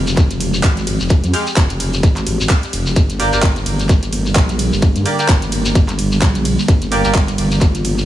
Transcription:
0.00 0.29 F1 loud
0.00 2.92 F3 medium
0.00 2.92 G#3 medium
0.00 2.92 C4 medium
0.00 6.64 G4 medium
0.07 closed hi-hat soft
0.07 shekere medium
0.17 kick loud
0.17 clap soft
0.17 closed hi-hat medium
0.17 shekere medium
0.30 0.62 F1 loud
0.30 closed hi-hat medium
0.30 shekere soft
0.40 open hi-hat loud
0.40 ride medium
0.54 shekere medium
0.63 0.98 G#1 loud
0.63 kick loud
0.63 clap loud
0.63 closed hi-hat medium
0.63 shekere medium
0.77 closed hi-hat medium
0.77 shekere soft
0.87 open hi-hat loud
0.87 ride medium
1.00 1.22 F1 loud
1.00 shekere medium
1.09 kick loud
1.09 closed hi-hat medium
1.09 shekere medium
1.24 1.32 F2 loud
1.24 closed hi-hat medium
1.24 shekere soft
1.34 1.44 G#3 medium
1.34 1.44 G4 medium
1.34 1.44 F5 loud
1.34 open hi-hat loud
1.34 ride medium
1.47 closed hi-hat soft
1.47 shekere medium
1.56 2.02 F1 loud
1.56 kick loud
1.56 clap loud
1.56 closed hi-hat medium
1.56 shekere medium
1.69 closed hi-hat medium
1.69 shekere soft
1.80 open hi-hat loud
1.80 ride medium
1.93 closed hi-hat soft
1.93 shekere medium
2.03 2.25 G#1 loud
2.03 kick loud
2.03 closed hi-hat medium
2.03 shekere medium
2.16 clap soft
2.16 closed hi-hat medium
2.16 shekere soft
2.27 2.38 G#1 loud
2.27 open hi-hat loud
2.27 ride medium
2.40 2.48 G#1 loud
2.40 shekere medium
2.49 kick loud
2.49 clap loud
2.49 closed hi-hat medium
2.49 shekere medium
2.63 closed hi-hat medium
2.63 shekere soft
2.73 2.95 F1 medium
2.73 open hi-hat loud
2.73 ride medium
2.86 shekere medium
2.96 3.31 G1 loud
2.96 8.05 D3 medium
2.96 8.05 G3 medium
2.96 8.05 A#3 medium
2.96 kick loud
2.96 closed hi-hat medium
2.96 shekere medium
3.10 closed hi-hat medium
3.10 shekere soft
3.20 3.30 A#3 loud
3.20 3.30 G4 medium
3.20 3.30 D5 loud
3.20 open hi-hat loud
3.20 ride medium
3.33 3.65 G1 loud
3.33 3.43 A#3 medium
3.33 3.43 G4 medium
3.33 3.43 D5 loud
3.33 closed hi-hat soft
3.33 shekere medium
3.42 kick loud
3.42 clap loud
3.42 closed hi-hat medium
3.42 shekere medium
3.56 closed hi-hat medium
3.56 shekere soft
3.66 4.01 G1 loud
3.66 open hi-hat loud
3.66 ride medium
3.79 closed hi-hat soft
3.79 shekere medium
3.89 kick loud
3.89 clap soft
3.89 closed hi-hat medium
3.89 shekere medium
4.03 4.34 G1 loud
4.03 closed hi-hat soft
4.03 shekere soft
4.13 open hi-hat loud
4.13 ride medium
4.26 shekere medium
4.35 4.70 A#1 loud
4.35 kick loud
4.35 clap loud
4.35 closed hi-hat medium
4.35 shekere medium
4.49 closed hi-hat medium
4.49 shekere soft
4.59 open hi-hat medium
4.59 ride medium
4.72 4.94 G1 loud
4.72 shekere medium
4.82 kick loud
4.82 closed hi-hat medium
4.82 shekere medium
4.96 5.04 G2 loud
4.96 closed hi-hat medium
4.96 shekere soft
5.06 5.16 A#3 medium
5.06 5.16 G4 medium
5.06 5.16 D5 loud
5.06 open hi-hat loud
5.06 ride medium
5.19 5.29 A#3 medium
5.19 5.29 G4 medium
5.19 5.29 D5 medium
5.19 closed hi-hat soft
5.19 shekere medium
5.28 5.74 G1 loud
5.28 kick loud
5.28 clap loud
5.28 closed hi-hat medium
5.28 shekere medium
5.42 closed hi-hat medium
5.42 shekere soft
5.52 open hi-hat medium
5.52 ride medium
5.65 closed hi-hat soft
5.65 shekere medium
5.75 6.20 G1 loud
5.75 kick loud
5.75 closed hi-hat medium
5.75 shekere medium
5.88 clap soft
5.88 closed hi-hat medium
5.88 shekere soft
5.99 open hi-hat loud
5.99 ride medium
6.12 shekere medium
6.21 6.56 A#1 loud
6.21 kick loud
6.21 clap loud
6.21 closed hi-hat medium
6.21 shekere medium
6.35 closed hi-hat medium
6.35 shekere soft
6.45 open hi-hat medium
6.45 ride medium
6.59 shekere medium
6.68 7.03 G1 loud
6.68 8.05 F4 medium
6.68 kick loud
6.68 closed hi-hat medium
6.68 shekere medium
6.82 closed hi-hat medium
6.82 shekere soft
6.92 7.02 A#3 loud
6.92 7.02 G4 loud
6.92 7.02 D5 loud
6.92 open hi-hat loud
6.92 ride medium
7.04 7.37 G1 loud
7.04 7.15 A#3 medium
7.04 7.15 G4 medium
7.04 7.15 D5 loud
7.04 closed hi-hat soft
7.04 shekere medium
7.15 kick loud
7.15 clap loud
7.15 closed hi-hat medium
7.15 shekere medium
7.28 closed hi-hat medium
7.28 shekere soft
7.38 7.73 G1 loud
7.38 open hi-hat medium
7.38 ride medium
7.51 closed hi-hat soft
7.51 shekere medium
7.61 kick loud
7.61 clap soft
7.61 closed hi-hat medium
7.61 shekere medium
7.75 8.05 G1 loud
7.75 closed hi-hat medium
7.75 shekere soft
7.85 open hi-hat loud
7.85 ride medium
7.98 shekere medium

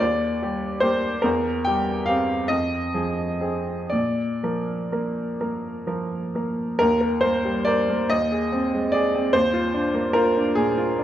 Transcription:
0.00 1.20 D#2 medium
0.00 0.81 D5 medium
0.42 0.79 G3 soft
0.42 0.79 G4 soft
0.80 1.20 A#3 soft
0.80 1.20 G4 soft
0.80 1.23 C5 medium
1.22 2.47 E2 medium
1.22 1.65 A#4 medium
1.65 2.05 G3 soft
1.65 2.05 G4 soft
1.65 2.07 G5 medium
2.06 2.47 C4 soft
2.06 2.47 G4 soft
2.06 2.49 F5 medium
2.48 3.88 F2 soft
2.48 3.91 D#5 medium
2.94 3.38 F3 soft
2.94 3.38 G#4 soft
3.41 3.88 C4 soft
3.41 3.88 G#4 soft
3.90 6.75 A#2 soft
3.90 5.38 D5 medium
4.43 4.88 F3 soft
4.43 4.88 A#4 soft
4.92 5.35 A#3 soft
4.92 5.35 A#4 soft
5.41 5.83 A#3 soft
5.41 5.83 A#4 soft
5.87 6.30 F3 soft
5.87 6.30 A#4 soft
6.35 6.75 A#3 soft
6.35 6.76 A#4 soft
6.79 8.06 D#2 medium
6.79 6.99 A#4 medium
7.01 7.35 A#4 soft
7.21 7.58 A#3 soft
7.21 7.65 C5 medium
7.45 7.79 G3 soft
7.65 8.01 A#4 soft
7.65 8.08 D5 medium
7.90 8.10 A#3 soft
8.10 9.29 D#2 medium
8.10 8.92 D#5 medium
8.32 8.64 G#4 soft
8.52 8.84 C4 soft
8.74 9.05 G#3 soft
8.92 9.25 G#4 soft
8.92 9.32 D5 medium
9.15 9.33 C4 soft
9.33 11.04 D#2 medium
9.33 10.15 C5 medium
9.53 9.86 F4 soft
9.74 10.07 D4 soft
9.94 10.27 A#3 soft
10.13 10.48 F4 soft
10.13 10.56 A#4 medium
10.37 10.70 D4 soft
10.55 10.90 A#2 soft
10.55 11.04 G#4 medium
10.77 11.04 F4 soft
10.99 11.04 D4 soft

